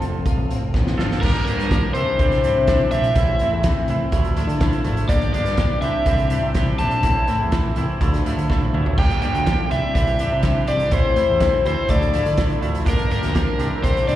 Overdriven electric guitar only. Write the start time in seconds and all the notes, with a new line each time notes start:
Already playing: A4
1.21 A#4
1.45 A#4
1.94 C5
2.91 E5
5.09 D5
5.33 D5
5.82 E5
6.79 A5
8.99 G5
9.22 G5
9.72 E5
10.68 D5
10.93 C5
11.67 C5
11.91 D5
12.90 A#4
13.12 A#4
13.84 C5
14.08 D5